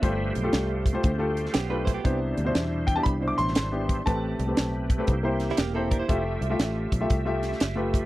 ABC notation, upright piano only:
X:1
M:4/4
L:1/16
Q:"Swing" 1/4=119
K:C
V:1 name="Upright piano"
[A,FGc]2 z [A,FGA]3 z [A,FGc] z [A,FGA]3 z [A,FGB]2 z | [B,DEc]2 z [B,,DEc]3 z [B,DEG] z [B,,DEc]3 z [B,DEG]2 z | [A,CGB]2 z [A,CGB]3 z [A,CGB] z [_B,EGc]3 z [B,EGc]2 z | [A,FGe]2 z [A,FGe]3 z [A,FGe] z [A,FGe]3 z [A,FGB]2 z |]
V:2 name="Upright piano" clef=bass
G,,6 z8 z2 | C,6 z8 z2 | A,,6 z2 C,6 z2 | z16 |]